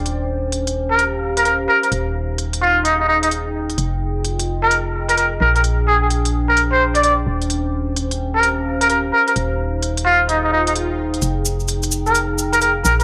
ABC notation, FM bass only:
X:1
M:4/4
L:1/8
Q:"Swing 16ths" 1/4=129
K:Fm
V:1 name="FM bass" clef=bass
E,,,6- E,,, z | E,,,8 | F,,,6- F,,, B,,,- | B,,,6- B,,, E,,,- |
E,,,6- E,,, z | E,,,8 | F,,,6- F,,, B,,, |]